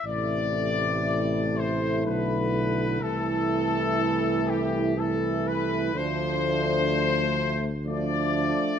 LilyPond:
<<
  \new Staff \with { instrumentName = "Trumpet section" } { \time 3/4 \key a \minor \tempo 4 = 62 d''4. c''8 b'4 | a'4. g'8 a'8 b'8 | c''2 d''4 | }
  \new Staff \with { instrumentName = "French horn section" } { \time 3/4 \key a \minor e'2. | e'2 e'4 | d'2 d'4 | }
  \new Staff \with { instrumentName = "Trombone section" } { \time 3/4 \key a \minor a2. | a2 a4 | a2 a4 | }
  \new Staff \with { instrumentName = "Trombone" } { \clef bass \time 3/4 \key a \minor c2 d4 | e2 e4 | f4. r8 f4 | }
  \new Staff \with { instrumentName = "Tuba" } { \clef bass \time 3/4 \key a \minor a,,2 b,,4 | c,2. | d,2~ d,8 r8 | }
>>